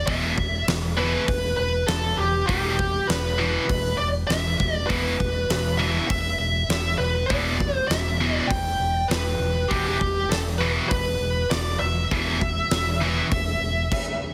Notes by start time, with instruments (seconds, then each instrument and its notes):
0.07 fingered electric bass E1, distorted electric guitar E2 B2 E3, lead electric guitar E5, kick, open hi-hat
0.37 fingered electric bass E1, kick
0.67 fingered electric bass E1, snare, open hi-hat
0.97 distorted electric guitar E2 B2 E3, lead electric guitar B4
1.28 fingered electric bass E1, kick, open hi-hat
1.57 fingered electric bass E1, lead electric guitar B4
1.87 fingered electric bass E1, lead electric guitar A4, snare, open hi-hat
2.18 fingered electric bass E1, lead electric guitar G4
2.47 fingered electric bass E1, distorted electric guitar E2 B2 E3, lead electric guitar G4, kick, open hi-hat
2.79 kick
3.07 fingered electric bass E1, lead electric guitar B4, snare, open hi-hat
3.38 distorted electric guitar E2 B2 E3
3.69 fingered electric bass E1, kick, open hi-hat
3.98 fingered electric bass E1, lead electric guitar D5
4.27 fingered electric bass E1, lead electric guitar E5, snare, open hi-hat
4.60 fingered electric bass E1, kick
4.76 lead electric guitar D5
4.87 fingered electric bass E1, distorted electric guitar E2 B2, lead electric guitar B4, kick, open hi-hat
4.91 distorted electric guitar E3
5.20 fingered electric bass E1, kick
5.49 fingered electric bass E1, snare, open hi-hat
5.78 distorted electric guitar E2 B2 E3, lead electric guitar E5
6.08 fingered electric bass E1, lead electric guitar E5, kick, open hi-hat
6.39 fingered electric bass E1
6.69 fingered electric bass E1, snare, open hi-hat
6.98 fingered electric bass E1, lead electric guitar B4
7.26 fingered electric bass E1, lead electric guitar D5, open hi-hat
7.30 distorted electric guitar E2 B2 E3, kick
7.60 kick
7.75 lead electric guitar C5
7.87 fingered electric bass E1, lead electric guitar E5, snare, open hi-hat
8.21 distorted electric guitar E2 B2 E3
8.36 lead electric guitar D5
8.47 fingered electric bass E1, lead electric guitar G5, kick, open hi-hat
8.79 fingered electric bass E1
9.08 fingered electric bass E1, lead electric guitar B4, snare, open hi-hat
9.39 fingered electric bass E1
9.68 fingered electric bass E1, distorted electric guitar E2 B2 E3, lead electric guitar G4, kick, open hi-hat
10.01 fingered electric bass E1, kick
10.29 fingered electric bass E1, lead electric guitar A4, snare, open hi-hat
10.59 distorted electric guitar E2 B2 E3, lead electric guitar B4
10.89 fingered electric bass E1, lead electric guitar B4, kick, open hi-hat
11.20 fingered electric bass E1
11.50 fingered electric bass E1, lead electric guitar D5, snare, open hi-hat
11.79 fingered electric bass E1, lead electric guitar E5
12.11 fingered electric bass E1, distorted electric guitar E2 B2 E3, kick, open hi-hat
12.41 kick
12.71 fingered electric bass E1, snare, open hi-hat
13.01 distorted electric guitar E2 B2 E3
13.32 fingered electric bass E1, kick, open hi-hat
13.61 fingered electric bass E1
13.92 kick, crash